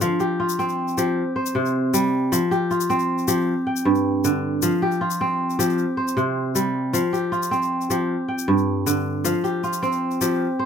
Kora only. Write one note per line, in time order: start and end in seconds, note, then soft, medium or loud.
0.01 0.96 F3 medium
0.01 1.01 F5 medium
0.20 0.97 G4 medium
0.40 1.91 F4 medium
0.59 2.39 C4 medium
0.98 1.22 F3 medium
0.98 2.39 G4 medium
1.36 2.55 C5 medium
1.55 2.37 C3 medium
1.94 2.37 G3 medium
2.32 3.27 F3 medium
2.51 3.27 G4 medium
2.71 4.22 F4 medium
2.90 4.70 C4 medium
3.28 3.52 F3 medium
3.28 4.69 G4 medium
3.67 4.60 G5 medium
3.85 4.68 G2 medium
4.25 4.68 D3 medium
4.63 5.58 F3 medium
4.63 5.62 F5 medium
4.82 5.58 G4 medium
5.01 6.52 F4 medium
5.21 7.01 C4 medium
5.59 5.83 F3 medium
5.59 7.00 G4 medium
5.97 7.16 C5 medium
6.17 6.99 C3 medium
6.55 6.99 G3 medium
6.93 7.89 F3 medium
6.93 7.93 F5 medium
7.13 7.90 G4 medium
7.32 8.83 F4 medium
7.51 9.31 C4 medium
7.90 8.14 F3 medium
7.90 9.32 G4 medium
8.28 9.22 G5 medium
8.48 9.30 G2 medium
8.86 9.30 D3 medium
9.24 10.20 F3 medium
9.24 10.25 F5 medium
9.44 10.21 G4 medium
9.64 10.65 F4 medium
9.83 10.65 C4 medium
10.21 10.45 F3 medium
10.21 10.65 G4 medium
10.59 10.65 C5 medium